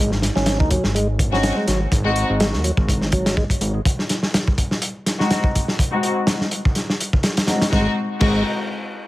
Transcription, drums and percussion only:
0.12 snare soft
0.22 snare soft
0.22 closed hi-hat medium
0.36 snare soft
0.46 snare loud
0.46 closed hi-hat medium
0.60 kick medium
0.71 kick medium
0.71 closed hi-hat medium
0.84 snare soft
0.96 closed hi-hat medium
1.19 kick medium
1.19 closed hi-hat medium
1.34 snare soft
1.43 snare loud
1.43 closed hi-hat medium
1.68 snare soft
1.68 closed hi-hat medium
1.92 kick loud
1.92 closed hi-hat medium
2.16 closed hi-hat medium
2.40 snare loud
2.40 closed hi-hat medium
2.53 snare soft
2.64 closed hi-hat medium
2.77 kick medium
2.89 kick medium
2.89 closed hi-hat medium
3.02 snare soft
3.12 kick medium
3.12 closed hi-hat medium
3.26 snare loud
3.26 closed hi-hat medium
3.37 kick medium
3.50 kick medium
3.50 closed hi-hat medium
3.61 closed hi-hat medium
3.85 kick loud
3.85 closed hi-hat medium
3.99 snare soft
4.09 snare soft
4.09 closed hi-hat medium
4.23 snare soft
4.34 snare loud
4.34 closed hi-hat medium
4.48 kick medium
4.58 kick loud
4.58 closed hi-hat medium
4.71 snare soft
4.82 closed hi-hat medium
5.06 snare soft
5.06 closed hi-hat medium
5.20 snare soft
5.31 snare loud
5.31 closed hi-hat medium
5.44 kick medium
5.55 kick medium
5.55 closed hi-hat medium
5.68 snare soft
5.79 kick loud
5.79 closed hi-hat medium
6.03 closed hi-hat medium
6.27 snare loud
6.27 closed hi-hat medium
6.41 snare soft
6.51 closed hi-hat medium
6.65 kick medium
6.75 snare soft
6.75 closed hi-hat medium
6.90 snare soft
7.00 closed hi-hat medium
7.13 kick loud
7.23 snare loud
7.23 closed hi-hat medium
7.37 snare loud
7.37 closed hi-hat medium
7.47 snare loud
7.47 closed hi-hat medium
7.62 snare medium
7.62 closed hi-hat medium
7.72 kick loud
7.72 snare medium
8.20 kick loud
8.20 crash medium

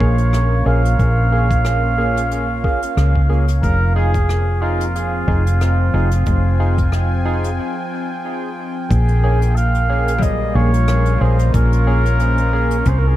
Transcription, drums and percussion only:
0.00 kick loud
0.18 closed hi-hat medium
0.33 cross-stick medium
0.33 closed hi-hat medium
0.85 closed hi-hat medium
0.99 kick loud
0.99 closed hi-hat medium
1.51 kick loud
1.51 closed hi-hat medium
1.65 cross-stick medium
1.65 closed hi-hat medium
2.17 closed hi-hat medium
2.31 closed hi-hat medium
2.64 kick loud
2.82 closed hi-hat medium
2.97 cross-stick medium
2.97 closed hi-hat medium
3.16 kick medium
3.48 closed hi-hat medium
3.63 kick loud
3.63 closed hi-hat medium
4.14 kick loud
4.14 closed hi-hat medium
4.29 cross-stick medium
4.29 closed hi-hat soft
4.81 closed hi-hat medium
4.96 closed hi-hat medium
5.28 kick medium
5.47 closed hi-hat medium
5.61 cross-stick medium
5.61 closed hi-hat medium
6.11 closed hi-hat medium
6.26 kick loud
6.26 closed hi-hat medium
6.78 kick loud
6.78 closed hi-hat medium
6.92 cross-stick medium
6.92 closed hi-hat medium
7.44 closed hi-hat medium
8.91 kick loud
8.91 closed hi-hat medium
9.08 closed hi-hat soft
9.42 closed hi-hat medium
9.57 closed hi-hat medium
9.74 closed hi-hat soft
10.08 closed hi-hat medium
10.22 kick loud
10.22 closed hi-hat medium
10.74 closed hi-hat medium
10.88 cross-stick medium
10.88 closed hi-hat medium
11.06 closed hi-hat soft
11.39 closed hi-hat medium
11.54 kick loud
11.54 closed hi-hat medium
11.73 closed hi-hat medium
12.06 closed hi-hat medium
12.20 closed hi-hat medium
12.38 closed hi-hat soft
12.71 closed hi-hat medium
12.85 kick loud
12.85 closed hi-hat medium

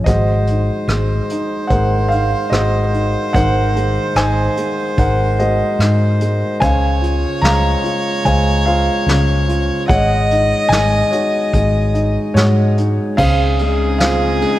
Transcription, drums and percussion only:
0.06 kick medium
0.06 closed hi-hat medium
0.47 closed hi-hat soft
0.88 cross-stick medium
0.88 closed hi-hat medium
1.30 closed hi-hat soft
1.70 kick medium
1.70 closed hi-hat medium
2.12 closed hi-hat soft
2.52 cross-stick medium
2.52 closed hi-hat medium
2.94 closed hi-hat soft
3.34 kick medium
3.34 closed hi-hat medium
3.76 closed hi-hat soft
4.16 cross-stick medium
4.16 closed hi-hat medium
4.57 closed hi-hat soft
4.98 kick medium
4.98 closed hi-hat medium
5.39 closed hi-hat soft
5.80 cross-stick medium
5.80 closed hi-hat medium
6.21 closed hi-hat soft
6.62 kick medium
6.62 closed hi-hat medium
7.04 closed hi-hat soft
7.44 snare medium
7.44 closed hi-hat medium
7.85 closed hi-hat soft
8.26 kick medium
8.26 closed hi-hat medium
8.67 closed hi-hat soft
9.08 snare medium
9.08 closed hi-hat medium
9.49 closed hi-hat soft
9.89 kick medium
9.89 closed hi-hat medium
10.31 closed hi-hat soft
10.72 snare medium
10.72 closed hi-hat medium
11.12 closed hi-hat medium
11.53 kick medium
11.53 closed hi-hat medium
11.95 closed hi-hat soft
12.36 snare medium
12.36 closed hi-hat medium
12.78 closed hi-hat soft
13.18 kick medium
13.18 crash medium
13.59 ride soft
14.00 snare medium
14.00 ride medium
14.42 ride soft

